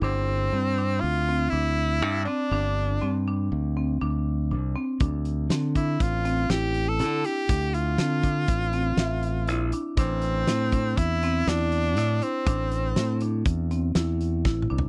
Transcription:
<<
  \new Staff \with { instrumentName = "Tenor saxophone" } { \time 5/4 \key d \minor \tempo 4 = 121 c'2 f'4 e'4. d'8~ | d'4. r2. r8 | r4. e'8 f'4 g'8. a'8. g'8~ | g'8 f'1 r8 |
c'2 e'4 d'4. c'8~ | c'4. r2. r8 | }
  \new Staff \with { instrumentName = "Marimba" } { \time 5/4 \key d \minor d'4 c'8 d'4 c'8 d'4 d'8 c'8 | d'4 c'8 d'4 c'8 d'4 d'8 c'8 | d'4 c'8 d'4 c'8 e'4 e'8 d'8 | d'4 c'8 d'4 c'8 e''4 e'8 d'8 |
d'4 c'8 d'4 c'8 e'4 e'8 d'8 | d'4 c'8 d'4 c'8 e'4 e'8 d'8 | }
  \new Staff \with { instrumentName = "Fingered electric bass" } { \clef bass \time 5/4 \key d \minor g,,4 g,4 d,4 d,4 g,8 r8 | g,,4 g,4 d,4 d,4 c,8 r8 | d,4 d4 a,,4 a,,4 d8 r8 | d,4 d4 a,,4 a,,4 bes,,8 r8 |
a,,4 a,4 e,4 e,4 a,8 r8 | a,,4 a,4 e,4 e,4 a,,8 c,8 | }
  \new DrumStaff \with { instrumentName = "Drums" } \drummode { \time 5/4 r4 r4 r4 r4 r4 | r4 r4 r4 r4 r4 | <hh bd>8 hh8 <hh sn>8 <hh bd>8 <hh bd>8 hh8 <hh sn>8 hh8 hh8 hh8 | <hh bd>8 hh8 <hh sn>8 <hh bd>8 <hh bd>8 hh8 <hh sn>8 hh8 hh8 hh8 |
<hh bd>8 hh8 <hh sn>8 <hh bd>8 <hh bd>8 hh8 <hh sn>8 hh8 hh8 hh8 | <hh bd>8 hh8 <hh sn>8 hh8 <hh bd>8 hh8 <hh sn>8 hh8 \tuplet 3/2 { <bd sn>8 toml8 tomfh8 } | }
>>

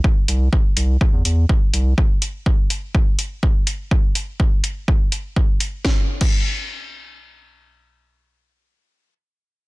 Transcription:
<<
  \new Staff \with { instrumentName = "Analog synth bass" } { \clef bass \time 4/4 \key c \major \tempo 4 = 124 r8 c,8 r8 c,8 r16 e,16 e,8 r8 c,8 | r1 | r1 | r1 |
r1 | }
  \new DrumStaff \with { instrumentName = "Drums" } \drummode { \time 4/4 bd8 hh8 bd8 hh8 bd8 hh8 bd8 hh8 | bd8 hh8 bd8 hh8 bd8 hh8 bd8 hh8 | bd8 hh8 bd8 hh8 bd8 hh8 bd8 hh8 | <bd sn>8. <cymc bd>16 r4 r4 r4 |
r4 r4 r4 r4 | }
>>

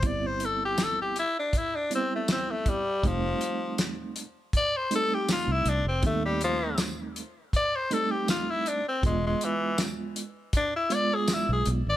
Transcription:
<<
  \new Staff \with { instrumentName = "Tenor saxophone" } { \time 4/4 \key f \lydian \tempo 4 = 80 d''16 c''16 a'16 g'16 a'16 g'16 e'16 d'16 e'16 d'16 c'16 a16 c'16 a16 g8 | f4 r4 d''16 c''16 a'16 g'16 f'16 e'16 d'16 c'16 | a16 g16 f8 r4 d''16 c''16 a'16 g'16 f'16 e'16 d'16 c'16 | gis16 gis16 e8 r4 d'16 e'16 d''16 gis'16 e'16 gis'16 r16 d''16 | }
  \new Staff \with { instrumentName = "Reed electric piano" } { \time 4/4 \key f \lydian <g b c' e'>4. r4 <g b c' e'>4 r8 | <g a c' ees'>4. r4 <g a c' ees'>4 r8 | <g a c' ees'>4. r4 <g a c' ees'>4 r8 | <gis b d' f'>4. r4 <gis b d' f'>4 r8 | }
  \new Staff \with { instrumentName = "Fingered electric bass" } { \clef bass \time 4/4 \key f \lydian g,,2 r2 | f,,8 r2 r8. c,16 c,16 f,,16 | ees,2 r2 | e,,8 r2 r8. b,,16 b,,16 gis,,16 | }
  \new DrumStaff \with { instrumentName = "Drums" } \drummode { \time 4/4 <hh bd>8 hh8 <hh sn tamb>8 hh8 <hh bd>8 hh8 <hh sn tamb>8 <hh bd>8 | <hh bd>8 hh8 <hh sn tamb>8 hh8 <hh bd>8 hh8 <hh sn tamb>8 hh8 | <hh bd>8 hh8 <hh sn tamb>8 hh8 <hh bd>8 hh8 <hh sn tamb>8 hh8 | <hh bd>8 hh8 <hh sn tamb>8 hh8 <hh bd>8 hh8 <hh sn tamb>8 hh8 | }
>>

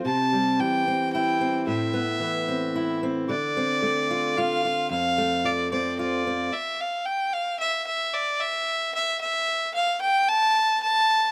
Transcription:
<<
  \new Staff \with { instrumentName = "Fiddle" } { \time 3/4 \key f \lydian \tempo 4 = 111 a''4 g''4 g''4 | e''2~ e''8 r8 | d''2 f''4 | f''4 d''8 d''8 d''4 |
e''8 f''8 g''8 f''8 e''8 e''8 | d''8 e''4 e''8 e''4 | f''8 g''8 a''4 a''4 | }
  \new Staff \with { instrumentName = "Steel-string acoustic guitar" } { \time 3/4 \key f \lydian << { r8 g4 c'8 e'8 c'8 | r8 b4 c'8 e'8 c'8 | r8 c'4 f'8 f'8 f'8 | r8 a4 c'8 f'8 c'8 |
r2. | r2. | r2. | } \\ { c4 e2 | a,4 e2 | d4 a2 | f,4 f2 |
r2. | r2. | r2. | } >> }
>>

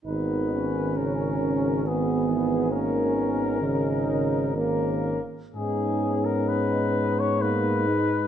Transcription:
<<
  \new Staff \with { instrumentName = "Cornet" } { \time 3/4 \key gis \minor \tempo 4 = 65 b'4 ais'4 gis'4 | ais'2 ais'8 r8 | gis'8. ais'16 b'8. cis''16 b'4 | }
  \new Staff \with { instrumentName = "French horn section" } { \time 3/4 \key gis \minor dis'8 cis'4. b4 | cis'4 dis'4 ais8 r8 | dis'2. | }
  \new Staff \with { instrumentName = "Euphonium" } { \time 3/4 \key gis \minor b4 cis'4 b4 | ais8 b8 cis'4 cis'8 r8 | cis'2 b8 dis'8 | }
  \new Staff \with { instrumentName = "Trombone" } { \clef bass \time 3/4 \key gis \minor dis4 cis8 cis8 dis8 e8 | dis4 cis8 cis8 dis8 r8 | b2 ais8 gis8 | }
  \new Staff \with { instrumentName = "Tuba" } { \clef bass \time 3/4 \key gis \minor gis,,2.~ | gis,,2~ gis,,8 r8 | gis,2. | }
>>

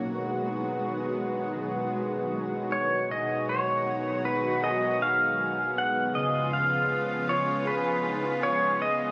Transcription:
<<
  \new Staff \with { instrumentName = "Pedal steel guitar" } { \time 4/4 \key gis \dorian \tempo 4 = 79 r2. r8 cis''8 | dis''8 cis''4 b'8 dis''8 eis''4 fis''8 | dis''8 eis''4 cis''8 b'4 cis''8 dis''8 | }
  \new Staff \with { instrumentName = "Clean electric guitar" } { \time 4/4 \key gis \dorian b,16 dis'16 gis16 dis'16 gis16 dis'16 gis16 dis'16 b,16 dis'16 gis16 dis'16 gis16 dis'16 gis16 dis'16 | <b, gis'>8 dis'8 b8 dis'8 gis'8 dis'8 gis'8 b8 | <cis gis'>8 eis'8 b8 eis'8 gis'8 dis'16 eis'16 gis'8 b8 | }
  \new Staff \with { instrumentName = "Analog synth pad" } { \clef bass \time 4/4 \key gis \dorian << { <dis fis fis'>1 | <dis fis fis'>1 | <cis eis eis'>1 | } \\ { <gis b>1 | <gis b>1~ | <gis b>1 | } >> }
>>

